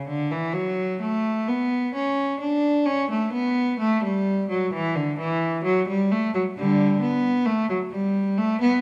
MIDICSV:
0, 0, Header, 1, 2, 480
1, 0, Start_track
1, 0, Key_signature, 2, "major"
1, 0, Tempo, 928793
1, 525, Time_signature, 3, 2, 24, 8
1, 2444, Tempo, 911854
1, 4593, End_track
2, 0, Start_track
2, 0, Title_t, "Cello"
2, 0, Program_c, 0, 42
2, 41, Note_on_c, 0, 50, 77
2, 161, Note_off_c, 0, 50, 0
2, 161, Note_on_c, 0, 52, 74
2, 276, Note_on_c, 0, 54, 77
2, 283, Note_off_c, 0, 52, 0
2, 521, Note_off_c, 0, 54, 0
2, 523, Note_on_c, 0, 57, 86
2, 758, Note_off_c, 0, 57, 0
2, 764, Note_on_c, 0, 59, 82
2, 1002, Note_off_c, 0, 59, 0
2, 1008, Note_on_c, 0, 61, 80
2, 1238, Note_off_c, 0, 61, 0
2, 1243, Note_on_c, 0, 62, 83
2, 1476, Note_off_c, 0, 62, 0
2, 1477, Note_on_c, 0, 61, 83
2, 1598, Note_off_c, 0, 61, 0
2, 1606, Note_on_c, 0, 57, 77
2, 1720, Note_off_c, 0, 57, 0
2, 1721, Note_on_c, 0, 59, 82
2, 1957, Note_off_c, 0, 59, 0
2, 1961, Note_on_c, 0, 57, 96
2, 2080, Note_off_c, 0, 57, 0
2, 2086, Note_on_c, 0, 55, 86
2, 2320, Note_off_c, 0, 55, 0
2, 2324, Note_on_c, 0, 54, 80
2, 2440, Note_off_c, 0, 54, 0
2, 2446, Note_on_c, 0, 52, 85
2, 2561, Note_on_c, 0, 50, 75
2, 2562, Note_off_c, 0, 52, 0
2, 2682, Note_off_c, 0, 50, 0
2, 2687, Note_on_c, 0, 52, 86
2, 2919, Note_off_c, 0, 52, 0
2, 2924, Note_on_c, 0, 54, 89
2, 3039, Note_off_c, 0, 54, 0
2, 3051, Note_on_c, 0, 55, 88
2, 3163, Note_off_c, 0, 55, 0
2, 3175, Note_on_c, 0, 57, 89
2, 3287, Note_off_c, 0, 57, 0
2, 3295, Note_on_c, 0, 54, 79
2, 3337, Note_off_c, 0, 54, 0
2, 3419, Note_on_c, 0, 50, 77
2, 3419, Note_on_c, 0, 55, 95
2, 3635, Note_off_c, 0, 50, 0
2, 3646, Note_on_c, 0, 59, 90
2, 3647, Note_off_c, 0, 55, 0
2, 3880, Note_off_c, 0, 59, 0
2, 3880, Note_on_c, 0, 57, 92
2, 4002, Note_off_c, 0, 57, 0
2, 4007, Note_on_c, 0, 54, 76
2, 4049, Note_off_c, 0, 54, 0
2, 4120, Note_on_c, 0, 55, 88
2, 4356, Note_off_c, 0, 55, 0
2, 4365, Note_on_c, 0, 57, 101
2, 4484, Note_off_c, 0, 57, 0
2, 4489, Note_on_c, 0, 59, 93
2, 4593, Note_off_c, 0, 59, 0
2, 4593, End_track
0, 0, End_of_file